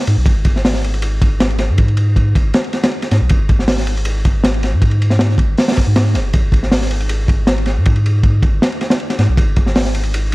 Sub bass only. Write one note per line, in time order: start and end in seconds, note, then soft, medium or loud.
0.07 0.16 G#2 loud
0.17 0.25 B1 medium
0.26 1.71 G#1 loud
1.69 2.34 G#2 loud
2.35 2.52 G#1 loud
3.11 3.20 G#2 loud
3.21 3.29 B1 medium
3.31 4.75 G#1 loud
4.73 5.38 G#2 loud
5.38 5.56 G#1 loud
5.87 6.16 G#2 loud
6.15 6.32 F#1 loud
6.34 7.79 G#1 loud
7.77 8.41 G#2 loud
8.43 8.60 G#1 loud
9.19 9.28 G#2 loud
9.29 9.37 B1 medium